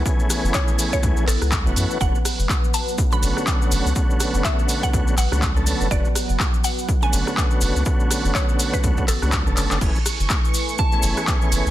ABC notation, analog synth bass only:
X:1
M:4/4
L:1/16
Q:"Swing 16ths" 1/4=123
K:Bdor
V:1 name="Analog synth bass" clef=bass
z3 F,,, z4 C,, z A,,, C,,2 F,,, F,, z | F,,, z2 F,,, z6 F,,, z3 F,,, C,, | z3 F,,, z4 C,, z A,,, C,,3 z F,,, | F,,, z2 F,,, z6 F,,, z3 F,,, C,, |
z3 F,,, z4 C,, z A,,, C,,2 E,,, F,,, F,,, | F,,, z2 F,,, z6 F,,, z3 F,,, C,, |]